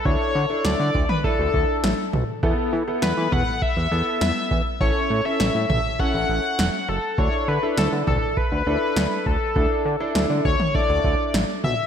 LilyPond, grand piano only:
\new Staff \with { instrumentName = "Grand piano" } { \time 4/4 \key d \major \tempo 4 = 101 <d' e' a'>8 r16 <d' e' a'>8. r8 <d' e' a'>4~ <d' e' a'>16 r8. | <b e' a'>8 r16 <b e' a'>4 r8. <b e' a'>4 r8 | <cis' e' a'>8 r16 <cis' e' a'>8. r8 <cis' e' a'>4~ <cis' e' a'>16 r8. | <d' e' a'>8 r16 <d' e' a'>4 r8. <d' e' a'>4 r8 |
<d' e' a'>8 r16 <d' e' a'>8. r8 <d' e' a'>4~ <d' e' a'>16 r8. | }